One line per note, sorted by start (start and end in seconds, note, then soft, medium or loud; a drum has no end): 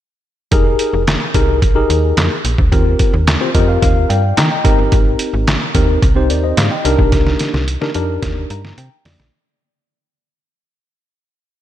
0.51 0.75 F1 loud
0.51 1.01 D#4 medium
0.51 1.01 G4 medium
0.51 1.01 G#4 medium
0.51 1.01 A#4 medium
0.51 kick loud
0.51 closed hi-hat medium
0.79 closed hi-hat medium
0.93 1.17 F1 medium
1.07 snare loud
1.07 clap medium
1.07 closed hi-hat medium
1.34 1.64 C2 medium
1.34 1.59 D#4 medium
1.34 1.59 G4 medium
1.34 1.59 G#4 medium
1.34 1.59 A#4 medium
1.34 kick medium
1.34 closed hi-hat medium
1.62 1.86 A#1 loud
1.62 kick loud
1.62 closed hi-hat medium
1.75 2.33 D#4 medium
1.75 2.33 G4 medium
1.75 2.33 G#4 medium
1.75 2.33 A#4 medium
1.90 2.13 D#2 medium
1.90 closed hi-hat medium
2.17 2.29 F2 loud
2.17 snare medium
2.17 clap medium
2.17 closed hi-hat medium
2.45 2.56 A#1 medium
2.45 closed hi-hat medium
2.58 2.70 D2 medium
2.58 kick medium
2.72 2.96 D#2 loud
2.72 3.13 C4 medium
2.72 3.13 F4 medium
2.72 3.13 G4 medium
2.72 3.13 A#4 medium
2.72 kick loud
2.72 closed hi-hat medium
2.99 kick loud
2.99 closed hi-hat medium
3.13 3.37 D#2 medium
3.27 snare loud
3.27 clap loud
3.27 closed hi-hat medium
3.40 3.49 C4 medium
3.40 3.49 F4 medium
3.40 3.49 G4 medium
3.40 3.49 C5 medium
3.54 3.78 F2 medium
3.54 4.20 C4 medium
3.54 4.20 F4 medium
3.54 4.20 G4 medium
3.54 4.21 A#4 medium
3.54 3.67 D#5 medium
3.54 kick medium
3.54 closed hi-hat medium
3.68 3.81 F5 medium
3.82 4.06 D#2 loud
3.82 4.08 F5 medium
3.82 kick loud
3.82 closed hi-hat medium
4.10 4.33 G2 medium
4.10 4.36 D5 medium
4.10 4.36 F5 medium
4.10 4.35 G5 medium
4.10 closed hi-hat medium
4.37 4.49 D#3 loud
4.37 4.50 G5 medium
4.37 4.63 A#5 medium
4.37 snare loud
4.37 clap medium
4.37 closed hi-hat medium
4.51 4.77 D#5 medium
4.51 4.77 G5 medium
4.64 4.76 G#1 loud
4.64 5.52 C4 medium
4.64 5.53 D#4 medium
4.64 5.53 G4 medium
4.64 5.53 A#4 medium
4.64 4.90 A#5 medium
4.64 kick medium
4.64 closed hi-hat medium
4.78 4.90 G1 medium
4.92 5.16 G#1 loud
4.92 kick loud
4.92 closed hi-hat medium
5.19 closed hi-hat medium
5.33 5.57 G#1 medium
5.47 snare loud
5.47 clap medium
5.47 closed hi-hat medium
5.74 5.98 D#2 medium
5.74 5.99 C4 medium
5.74 5.99 D#4 medium
5.74 6.00 G4 medium
5.74 6.00 A#4 medium
5.74 kick medium
5.74 closed hi-hat medium
6.02 6.31 C2 loud
6.02 kick loud
6.02 closed hi-hat medium
6.16 6.73 C4 medium
6.16 6.74 D#4 medium
6.16 6.74 G4 medium
6.16 6.30 C5 medium
6.30 6.53 D#2 medium
6.30 6.43 A#4 medium
6.30 6.43 D5 medium
6.30 closed hi-hat medium
6.44 6.57 C5 medium
6.44 6.57 D#5 medium
6.57 6.69 G#2 loud
6.57 6.70 F5 medium
6.57 snare loud
6.57 clap medium
6.57 closed hi-hat medium
6.71 6.98 D#5 medium
6.71 6.97 G5 medium
6.85 6.97 C2 loud
6.85 7.62 D4 medium
6.85 7.62 D#4 medium
6.85 7.62 G4 medium
6.85 7.62 A#4 loud
6.85 closed hi-hat medium
6.99 7.10 A#1 medium
6.99 kick medium
7.12 7.36 C2 loud
7.12 kick loud
7.12 snare medium
7.12 closed hi-hat medium
7.27 snare soft
7.39 snare medium
7.39 closed hi-hat medium
7.54 7.77 C2 loud
7.54 snare medium
7.68 closed hi-hat medium
7.81 7.89 D4 medium
7.81 7.90 D#4 medium
7.81 7.90 G4 medium
7.81 7.90 A#4 medium
7.81 snare medium
7.94 8.19 F2 medium
7.94 8.61 D4 medium
7.94 8.61 D#4 medium
7.94 8.61 G4 medium
7.94 8.61 A#4 medium
7.94 closed hi-hat medium
8.23 8.46 D#2 medium
8.23 kick loud
8.23 snare medium
8.23 closed hi-hat medium
8.50 8.74 G2 medium
8.50 8.76 A#5 medium
8.50 closed hi-hat medium
8.65 snare medium
8.78 8.89 C3 loud
8.78 9.03 G5 medium
8.78 closed hi-hat medium
9.05 9.17 F2 medium
9.05 9.31 D5 medium
9.05 snare loud
9.05 open hi-hat medium
9.19 9.31 A#1 medium
9.19 snare medium